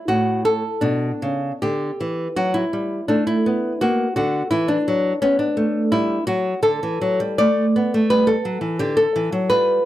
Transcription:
0.08 0.62 A2 medium
0.08 0.44 F#4 medium
0.45 0.81 A4 medium
0.81 1.10 B2 medium
0.81 1.58 D4 medium
1.22 1.51 C#3 medium
1.62 1.90 D3 medium
1.62 2.34 G4 medium
2.00 2.27 E3 medium
2.36 2.63 F#3 medium
2.36 2.55 F#4 medium
2.54 3.07 E4 medium
2.73 3.00 G3 medium
3.08 3.35 A3 medium
3.08 3.26 D4 medium
3.27 3.79 E4 medium
3.46 3.72 B3 medium
3.81 4.07 A#3 medium
3.81 4.15 F#4 medium
4.16 4.42 D3 medium
4.16 4.50 F#4 medium
4.51 4.77 E3 medium
4.51 4.69 E4 medium
4.68 5.19 D4 medium
4.88 5.12 F#3 medium
5.22 5.47 B3 medium
5.22 5.39 C#4 medium
5.39 5.89 D4 medium
5.57 5.82 A3 medium
5.92 6.18 G3 medium
5.92 6.26 E4 medium
6.27 6.53 F#3 medium
6.27 6.61 F#4 medium
6.62 6.80 D3 medium
6.62 7.35 A4 loud
6.83 7.00 E3 medium
7.01 7.19 F#3 medium
7.20 7.37 G3 medium
7.38 7.65 A3 medium
7.38 8.07 D5 loud
7.76 7.92 B3 medium
7.94 8.10 A3 medium
8.10 8.35 G3 medium
8.10 8.27 B4 loud
8.27 8.77 A4 medium
8.45 8.61 F#3 medium
8.61 8.78 E3 medium
8.79 9.05 D3 medium
8.79 8.96 G4 medium
8.97 9.48 A4 medium
9.16 9.32 E3 medium
9.32 9.50 F#3 medium
9.50 9.78 G3 medium
9.50 9.85 F4 soft
9.50 9.85 B4 loud

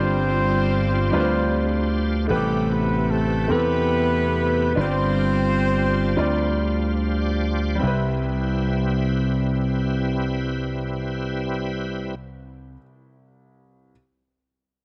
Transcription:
0.00 1.10 G1 medium
0.00 1.09 G2 medium
0.00 0.90 G3 medium
0.00 2.27 G3 soft
0.00 1.93 C4 medium
0.00 0.91 D4 medium
0.00 2.26 D4 soft
0.00 0.91 F4 medium
0.00 1.88 F4 medium
0.00 2.27 F4 soft
0.00 0.92 C5 medium
0.00 1.93 C5 medium
0.00 2.27 C5 medium
1.11 2.27 D2 medium
1.11 2.08 G3 medium
1.11 2.08 D4 medium
1.11 2.09 F4 medium
1.11 1.20 B4 medium
1.20 2.12 C5 medium
2.28 3.46 A1 medium
2.28 3.46 A2 medium
2.28 4.73 C3 soft
2.28 3.26 A3 medium
2.28 4.73 A3 soft
2.28 2.36 B3 soft
2.28 4.73 G4 soft
2.28 3.28 G4 medium
2.28 4.73 B4 medium
2.28 3.28 B4 medium
2.32 3.30 C3 medium
2.32 2.69 G3 medium
2.32 2.71 B3 medium
2.32 3.47 C4 medium
2.32 2.69 G4 medium
2.71 3.11 B3 medium
2.71 3.11 B4 medium
3.11 3.51 A3 medium
3.11 3.51 A4 medium
3.48 4.73 E2 medium
3.48 4.52 A3 medium
3.48 4.52 C4 medium
3.48 4.74 E4 medium
3.48 4.53 G4 medium
3.48 4.74 G4 medium
3.48 4.53 A4 medium
3.52 4.78 B3 medium
3.52 4.78 B4 loud
4.75 6.14 G1 loud
4.75 6.14 G2 soft
4.75 5.90 G3 medium
4.75 7.78 G3 soft
4.75 5.90 D4 medium
4.75 7.78 D4 soft
4.75 5.91 F4 medium
4.75 7.79 F4 soft
4.75 4.85 B4 medium
4.75 7.78 C5 medium
4.79 6.67 C4 medium
4.79 6.67 F4 medium
4.79 6.67 C5 loud
4.84 5.94 C5 medium
6.16 7.78 D2 medium
6.16 7.48 G3 medium
6.16 7.49 D4 medium
6.16 7.49 F4 medium
6.16 7.50 D5 medium
6.67 7.19 F5 medium
7.21 7.77 D5 medium
7.75 12.69 G3 medium
7.75 12.15 G3 medium
7.75 12.72 C4 medium
7.75 12.15 E4 medium
7.75 12.15 B4 medium
7.80 12.74 C2 medium
7.80 12.76 C2 medium
7.80 12.15 C4 medium
7.80 12.76 E4 medium
7.87 12.80 B4 medium

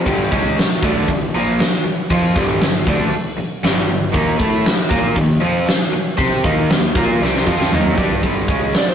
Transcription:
0.05 0.30 G1 medium
0.05 0.30 G2 medium
0.05 0.30 D3 medium
0.05 0.31 G3 loud
0.05 kick medium
0.05 crash loud
0.31 0.56 C#2 loud
0.31 0.56 C#3 medium
0.31 0.56 G#3 medium
0.31 0.57 C#4 medium
0.31 kick medium
0.56 muted overdriven electric guitar stroke medium
0.56 muted picked electric bass stroke soft
0.56 snare loud
0.56 open hi-hat medium
0.83 1.07 D2 medium
0.83 1.07 D3 loud
0.83 1.08 A3 medium
0.83 1.08 D4 loud
0.83 kick loud
1.08 1.32 G1 medium
1.08 1.29 G2 medium
1.08 1.29 D3 medium
1.08 kick medium
1.08 open hi-hat soft
1.34 1.58 A#1 medium
1.34 1.59 A#2 medium
1.34 1.59 F3 medium
1.34 1.59 A#3 medium
1.59 muted picked electric bass stroke soft
1.59 muted overdriven electric guitar stroke medium
1.59 snare loud
1.59 open hi-hat medium
1.85 muted picked electric bass stroke soft
1.85 muted overdriven electric guitar stroke medium
2.10 2.34 F2 medium
2.10 2.35 F3 medium
2.10 2.36 C4 medium
2.10 2.36 F4 medium
2.10 kick medium
2.10 open hi-hat medium
2.36 2.60 G1 loud
2.36 2.60 G2 medium
2.36 2.61 D3 medium
2.36 2.61 G3 medium
2.36 kick loud
2.36 snare soft
2.60 2.85 G1 medium
2.60 2.82 G2 medium
2.60 2.82 D3 medium
2.60 snare loud
2.60 open hi-hat medium
2.87 3.10 D2 medium
2.87 3.12 D3 medium
2.87 3.12 A3 loud
2.87 3.13 D4 loud
2.87 kick loud
3.12 open hi-hat medium
3.38 muted overdriven electric guitar stroke medium
3.38 muted picked electric bass stroke soft
3.63 3.87 G1 medium
3.63 3.87 G2 medium
3.63 3.87 D3 medium
3.63 3.89 G3 medium
3.63 snare medium
3.63 open hi-hat medium
3.88 4.13 G1 medium
3.88 4.09 G2 medium
3.88 4.09 D3 medium
4.12 4.38 D#2 medium
4.12 4.38 D#3 medium
4.12 4.38 A#3 loud
4.12 4.39 D#4 medium
4.12 kick medium
4.12 open hi-hat soft
4.38 4.63 A2 loud
4.38 4.64 A3 medium
4.38 4.64 E4 medium
4.38 4.64 A4 loud
4.38 kick medium
4.65 muted overdriven electric guitar stroke medium
4.65 muted picked electric bass stroke soft
4.65 snare loud
4.65 open hi-hat soft
4.89 5.15 A#2 medium
4.89 5.15 A#3 medium
4.89 5.15 F4 medium
4.89 5.15 A#4 loud
4.89 kick loud
5.16 5.40 D#2 medium
5.16 5.36 D#3 medium
5.16 5.36 A#3 medium
5.16 kick medium
5.16 open hi-hat soft
5.40 5.65 F2 medium
5.40 5.66 F3 medium
5.40 5.66 C4 medium
5.40 5.66 F4 medium
5.67 muted overdriven electric guitar stroke medium
5.67 muted picked electric bass stroke soft
5.67 snare loud
5.67 open hi-hat medium
5.92 muted picked electric bass stroke soft
5.92 muted overdriven electric guitar stroke soft
6.18 6.42 C3 medium
6.18 6.43 C4 medium
6.18 6.43 G4 loud
6.18 6.43 C5 loud
6.18 kick medium
6.18 open hi-hat medium
6.43 6.68 D#2 loud
6.43 6.68 D#3 medium
6.43 6.68 A#3 medium
6.43 6.69 D#4 medium
6.43 kick loud
6.69 6.94 D#2 medium
6.69 6.90 D#3 medium
6.69 6.90 A#3 medium
6.69 snare loud
6.69 open hi-hat medium
6.95 7.19 A#2 medium
6.95 7.20 A#3 medium
6.95 7.21 F4 loud
6.95 7.21 A#4 medium
6.95 kick loud
7.21 7.45 C2 medium
7.21 7.46 C3 medium
7.21 7.46 G3 medium
7.21 7.46 C4 medium
7.21 snare medium
7.36 snare medium
7.47 7.70 F2 medium
7.47 7.71 F3 medium
7.47 7.71 C4 medium
7.47 7.72 F4 medium
7.47 kick medium
7.61 snare medium
7.71 7.95 D#2 medium
7.71 7.97 D#3 medium
7.71 7.96 A#3 loud
7.71 7.97 D#4 medium
7.71 mid tom medium
7.86 mid tom medium
7.97 8.21 G2 medium
7.97 8.22 G3 medium
7.97 8.22 D4 medium
7.97 8.22 G4 medium
7.97 kick medium
8.10 floor tom medium
8.22 8.46 G1 medium
8.22 8.47 G2 medium
8.22 8.47 D3 medium
8.22 8.48 G3 loud
8.22 kick medium
8.22 open hi-hat soft
8.48 8.72 C#2 medium
8.48 8.73 C#3 medium
8.48 8.73 G#3 medium
8.48 8.74 C#4 medium
8.48 kick loud
8.73 muted overdriven electric guitar stroke medium
8.73 muted picked electric bass stroke soft
8.73 snare loud
8.73 open hi-hat soft
8.77 8.88 D5 medium
8.88 8.95 C5 medium

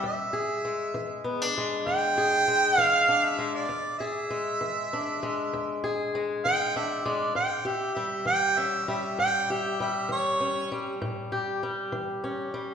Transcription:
0.03 0.58 E2 medium
0.03 1.23 E5 loud
0.33 2.16 G#4 medium
0.65 1.57 G#3 medium
0.94 1.50 E3 medium
1.24 1.42 B3 medium
1.42 3.07 D4 medium
1.58 2.47 G#3 medium
1.86 2.41 E2 medium
1.86 2.80 G5 loud
2.18 3.66 G#4 medium
2.48 3.37 G#3 medium
2.78 3.33 E3 medium
2.78 3.25 F5 loud
3.08 3.66 D4 medium
3.23 3.53 E5 loud
3.38 3.66 G#3 medium
3.55 3.98 D5 medium
3.69 4.24 E2 medium
3.98 5.83 G#4 medium
3.98 5.78 E5 loud
4.30 5.22 G#3 medium
4.61 5.16 E3 medium
4.93 6.75 D4 medium
5.23 6.14 G#3 medium
5.53 6.08 E2 medium
5.84 7.32 G#4 medium
6.15 7.04 G#3 medium
6.45 7.00 E3 medium
6.45 6.74 G5 loud
6.76 7.33 D4 medium
6.76 7.07 E5 medium
7.06 7.32 G#3 medium
7.06 7.35 D5 medium
7.35 7.90 A2 medium
7.35 7.69 G5 medium
7.65 9.48 G4 medium
7.65 7.94 E5 medium
7.95 8.88 G3 medium
7.95 8.25 E5 medium
8.25 8.81 E3 medium
8.25 8.60 G5 loud
8.57 10.39 C#4 medium
8.57 8.87 E5 loud
8.88 9.79 G3 medium
8.88 9.18 E5 medium
9.19 9.73 A2 medium
9.19 9.53 G5 loud
9.50 10.98 G4 medium
9.50 9.80 E5 loud
9.80 10.70 G3 medium
9.80 10.10 E5 medium
10.09 10.64 E3 medium
10.09 10.70 C#5 loud
10.40 10.97 C#4 medium
10.72 11.62 G3 medium
11.02 11.56 A2 medium
11.32 12.74 G4 medium
11.63 12.53 G3 medium
11.92 12.47 E3 medium
12.24 12.74 C#4 medium
12.54 12.74 G3 medium

